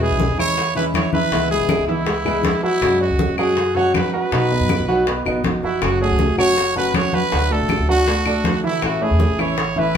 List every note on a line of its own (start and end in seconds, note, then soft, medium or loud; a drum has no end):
0.00 0.19 B2 medium
0.00 0.18 E3 medium
0.00 0.19 G#3 medium
0.00 0.32 G#3 medium
0.00 0.20 C#4 medium
0.00 0.20 E4 medium
0.00 0.32 G#4 medium
0.00 0.36 G#4 medium
0.00 0.32 B4 medium
0.00 high conga soft
0.10 0.28 B1 medium
0.19 0.38 E3 soft
0.19 0.38 G#3 soft
0.19 0.38 C#4 medium
0.19 0.37 E4 soft
0.19 high bongo soft
0.19 high conga medium
0.29 1.00 E2 medium
0.38 0.69 E3 medium
0.38 0.56 E3 medium
0.38 0.57 G#3 medium
0.38 0.57 C#4 soft
0.38 0.56 E4 medium
0.38 0.69 E4 medium
0.38 0.74 C#5 loud
0.38 0.70 E5 medium
0.38 high conga soft
0.38 claves medium
0.57 muted nylon-string guitar stroke medium
0.57 high bongo medium
0.57 high conga soft
0.75 1.07 E3 medium
0.75 0.93 E3 soft
0.75 0.94 G#3 medium
0.75 0.94 C#4 medium
0.75 0.94 E4 medium
0.75 1.07 E4 medium
0.75 0.85 B4 medium
0.75 1.07 E5 medium
0.75 high conga soft
0.94 1.31 E3 soft
0.94 1.32 G#3 soft
0.94 1.32 C#4 soft
0.94 1.32 E4 soft
0.94 1.12 C#5 medium
0.94 high bongo medium
0.94 low bongo medium
0.94 high conga medium
0.94 claves medium
1.13 1.29 E3 medium
1.13 1.29 E4 medium
1.13 1.48 B4 loud
1.13 1.29 E5 medium
1.13 high conga medium
1.31 1.59 C#2 medium
1.31 1.69 C#3 medium
1.31 1.47 E3 medium
1.31 1.68 E3 medium
1.31 1.69 G#3 medium
1.31 1.69 B3 medium
1.31 1.48 E4 medium
1.31 1.70 E4 medium
1.31 1.48 E5 medium
1.31 high bongo medium
1.31 high conga soft
1.50 1.82 G#3 medium
1.50 1.86 G#4 medium
1.50 1.82 G#4 medium
1.50 1.82 B4 medium
1.50 high bongo soft
1.50 high conga soft
1.60 1.78 G#1 medium
1.69 1.87 E3 soft
1.69 1.88 G#3 medium
1.69 1.87 B3 soft
1.69 1.87 E4 medium
1.69 high bongo medium
1.69 high conga loud
1.69 claves medium
1.78 2.50 C#2 medium
1.88 2.04 E3 medium
1.88 2.06 E3 medium
1.88 2.06 G#3 medium
1.88 2.06 B3 medium
1.88 2.59 E4 medium
1.88 2.06 E4 medium
1.88 2.04 E4 medium
1.88 2.04 E5 medium
1.88 high conga soft
2.06 2.22 G#3 medium
2.06 2.23 G#4 medium
2.06 2.23 B4 medium
2.06 muted nylon-string guitar stroke medium
2.06 high bongo medium
2.06 high conga soft
2.25 2.42 E3 medium
2.25 2.56 G#3 medium
2.25 2.43 G#3 medium
2.25 2.44 B3 medium
2.25 2.44 E4 medium
2.25 2.56 G#4 medium
2.25 2.57 B4 medium
2.25 high bongo soft
2.25 high conga soft
2.25 claves medium
2.43 2.81 E3 soft
2.43 2.81 G#3 soft
2.43 2.82 B3 soft
2.43 2.82 E4 medium
2.43 high bongo medium
2.43 low bongo medium
2.43 high conga medium
2.63 2.94 F#3 medium
2.63 2.99 E4 loud
2.63 2.94 F#4 medium
2.63 2.94 F#5 medium
2.63 high bongo soft
2.81 3.09 F#2 loud
2.81 3.18 F#3 medium
2.81 3.19 G#3 medium
2.81 3.20 C#4 medium
2.81 3.20 F#4 medium
2.81 high bongo medium
2.81 high conga soft
2.81 claves medium
3.00 3.32 C#4 medium
3.00 3.36 F#4 medium
3.00 3.32 C#5 medium
3.00 high conga soft
3.10 3.28 C#2 medium
3.19 3.38 F#3 soft
3.19 3.38 G#3 soft
3.19 3.38 C#4 soft
3.19 3.36 F#4 soft
3.19 high bongo medium
3.19 high conga medium
3.28 4.00 F#2 medium
3.37 3.69 F#3 medium
3.37 3.56 G#3 medium
3.37 3.57 C#4 medium
3.37 3.56 F#4 medium
3.37 3.70 F#4 medium
3.37 3.77 G#4 medium
3.37 3.70 F#5 medium
3.37 high conga soft
3.37 claves medium
3.57 muted nylon-string guitar stroke medium
3.57 high bongo medium
3.57 high conga soft
3.75 4.07 F#3 medium
3.75 3.94 G#3 soft
3.75 3.94 C#4 medium
3.75 3.94 F#4 medium
3.75 4.07 F#4 medium
3.75 3.95 C#5 medium
3.75 4.07 F#5 medium
3.75 high conga soft
3.94 4.31 F#3 soft
3.94 4.32 G#3 soft
3.94 4.32 C#4 soft
3.94 4.33 F#4 soft
3.94 4.12 B4 medium
3.94 high bongo medium
3.94 low bongo medium
3.94 high conga medium
3.94 claves medium
4.13 4.29 F#3 medium
4.13 4.29 F#4 medium
4.13 5.22 B4 loud
4.13 4.29 F#5 medium
4.32 4.59 B1 medium
4.32 4.69 B2 medium
4.32 4.48 F#3 medium
4.32 4.68 F#3 medium
4.32 4.69 B3 medium
4.32 4.69 D#4 medium
4.32 4.48 F#4 medium
4.32 4.70 F#4 medium
4.32 4.48 F#5 medium
4.32 high bongo medium
4.32 high conga soft
4.51 4.82 B3 medium
4.51 4.82 B4 medium
4.51 4.82 D#5 medium
4.51 high bongo soft
4.51 high conga soft
4.60 4.78 F#2 loud
4.69 4.88 F#3 soft
4.69 4.88 B3 soft
4.69 4.88 D#4 soft
4.69 4.87 F#4 soft
4.69 high bongo medium
4.69 high conga medium
4.69 claves medium
4.79 5.23 B1 medium
4.88 5.04 F#3 medium
4.88 5.06 F#3 medium
4.88 5.06 B3 medium
4.88 5.07 D#4 medium
4.88 5.06 F#4 medium
4.88 5.04 F#4 medium
4.88 5.04 F#5 medium
4.88 high conga soft
5.07 5.23 B3 medium
5.07 5.23 B4 medium
5.07 5.23 D#5 medium
5.07 muted nylon-string guitar stroke medium
5.07 high bongo medium
5.07 high conga soft
5.25 5.43 A1 medium
5.25 5.43 F#3 soft
5.25 5.57 B3 medium
5.25 5.44 B3 medium
5.25 5.44 D#4 medium
5.25 5.44 F#4 medium
5.25 5.57 B4 medium
5.25 5.57 D#5 medium
5.25 high bongo soft
5.25 high conga soft
5.25 claves medium
5.44 5.62 G#1 medium
5.44 5.81 F#3 soft
5.44 5.82 B3 soft
5.44 5.82 D#4 soft
5.44 5.82 F#4 medium
5.44 high bongo medium
5.44 low bongo medium
5.44 high conga medium
5.63 5.80 F#1 medium
5.63 5.94 F#3 medium
5.63 5.84 E4 medium
5.63 5.95 F#4 medium
5.63 5.95 F#5 medium
5.63 high bongo soft
5.81 6.09 F#1 medium
5.81 6.19 C#3 medium
5.81 6.18 F#3 medium
5.81 6.19 A3 medium
5.81 6.20 C#4 medium
5.81 6.01 F#4 medium
5.81 6.20 F#4 medium
5.81 high bongo medium
5.81 high conga soft
5.81 claves medium
6.00 6.32 A3 medium
6.00 6.32 F#4 medium
6.00 6.36 G#4 medium
6.00 6.32 C#5 medium
6.00 high conga soft
6.10 6.28 C#2 medium
6.19 6.38 A3 soft
6.19 6.38 C#4 soft
6.19 6.37 F#4 soft
6.19 high bongo medium
6.19 high conga medium
6.29 7.00 F#1 medium
6.38 6.69 F#3 medium
6.38 6.56 F#3 medium
6.38 6.56 A3 medium
6.38 6.56 C#4 medium
6.38 6.56 F#4 medium
6.38 6.69 F#4 medium
6.38 6.74 C#5 loud
6.38 6.69 F#5 medium
6.38 high conga soft
6.38 claves medium
6.57 muted nylon-string guitar stroke soft
6.57 high bongo medium
6.57 high conga soft
6.75 7.07 F#3 medium
6.75 6.93 F#3 medium
6.75 6.94 A3 medium
6.75 6.95 C#4 medium
6.75 6.94 F#4 medium
6.75 7.07 F#4 medium
6.75 6.97 B4 medium
6.75 7.07 F#5 medium
6.75 high conga soft
6.94 7.31 F#3 soft
6.94 7.32 A3 soft
6.94 7.32 C#4 soft
6.94 7.32 F#4 soft
6.94 7.16 C#5 medium
6.94 high bongo medium
6.94 low bongo medium
6.94 high conga medium
6.94 claves medium
7.13 7.29 F#3 medium
7.13 7.29 F#4 medium
7.13 7.54 B4 loud
7.13 7.29 F#5 medium
7.13 high conga medium
7.32 7.59 D2 medium
7.32 7.68 D3 medium
7.32 7.47 F#3 medium
7.32 7.69 A3 medium
7.32 7.70 D4 medium
7.32 7.47 F#4 medium
7.32 7.70 F#4 medium
7.32 7.48 F#5 medium
7.32 high bongo medium
7.32 high conga soft
7.51 7.82 A3 medium
7.51 7.82 A4 medium
7.51 7.89 A4 medium
7.51 7.82 D5 medium
7.51 high bongo soft
7.51 high conga soft
7.60 7.78 A1 loud
7.69 7.88 D3 soft
7.69 7.88 A3 medium
7.69 7.89 D4 medium
7.69 7.88 F#4 medium
7.69 high bongo medium
7.69 high conga medium
7.69 claves medium
7.79 8.50 D2 medium
7.88 8.04 F#3 medium
7.88 8.07 A3 medium
7.88 8.07 D4 medium
7.88 8.04 F#4 medium
7.88 8.07 F#4 medium
7.88 8.61 F#4 medium
7.88 8.04 F#5 medium
7.88 high conga soft
8.07 8.23 A3 medium
8.07 8.23 A4 medium
8.07 8.23 D5 medium
8.07 muted nylon-string guitar stroke medium
8.07 high bongo medium
8.07 high conga soft
8.25 8.57 A3 medium
8.25 8.45 A3 soft
8.25 8.45 D4 medium
8.25 8.44 F#4 medium
8.25 8.57 A4 medium
8.25 8.57 D5 medium
8.25 high bongo soft
8.25 high conga soft
8.25 claves medium
8.44 8.82 D3 soft
8.44 8.82 A3 medium
8.44 8.83 D4 medium
8.44 8.83 F#4 soft
8.44 high bongo medium
8.44 low bongo medium
8.44 high conga medium
8.64 8.95 E3 medium
8.64 8.95 E4 medium
8.64 8.82 E4 loud
8.64 8.95 E5 medium
8.64 high bongo soft
8.82 9.09 A1 medium
8.82 9.19 E3 medium
8.82 9.19 A3 medium
8.82 9.20 C#4 medium
8.82 9.20 E4 medium
8.82 9.04 F#4 medium
8.82 high bongo medium
8.82 high conga soft
8.82 claves medium
9.01 9.32 A3 medium
9.01 9.32 E4 medium
9.01 9.42 G#4 medium
9.01 9.32 C#5 medium
9.01 high conga soft
9.11 9.29 E2 medium
9.20 9.38 E3 soft
9.20 9.39 A3 soft
9.20 9.39 C#4 soft
9.20 9.38 E4 soft
9.20 high bongo medium
9.20 high conga medium
9.29 9.97 A1 medium
9.38 9.70 E3 medium
9.38 9.57 A3 medium
9.38 9.57 C#4 medium
9.38 9.70 E4 medium
9.38 9.57 E4 medium
9.38 9.80 C#5 medium
9.38 9.70 E5 medium
9.38 high conga soft
9.38 claves medium
9.57 muted nylon-string guitar stroke medium
9.57 high bongo medium
9.57 high conga soft
9.76 9.97 E3 medium
9.76 9.94 A3 medium
9.76 9.95 C#4 medium
9.76 9.95 E4 medium
9.76 9.97 E4 medium
9.76 9.97 B4 medium
9.76 9.97 E5 medium
9.76 high conga soft